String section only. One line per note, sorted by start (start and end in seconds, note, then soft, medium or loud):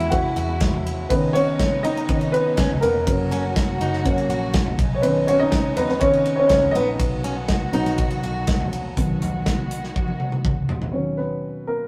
0.00 1.08 B2 medium
0.00 1.08 G#3 medium
0.00 1.08 E4 medium
1.10 6.96 C#3 medium
1.10 3.05 B3 medium
1.10 3.05 D#4 medium
3.06 4.77 A#3 medium
3.06 4.77 F#4 medium
4.79 8.93 B3 medium
4.79 6.98 D#4 medium
6.99 8.94 D#3 medium
6.99 8.94 F#4 medium
8.97 10.92 D#3 medium
8.97 10.92 B3 medium
8.97 10.92 F#4 medium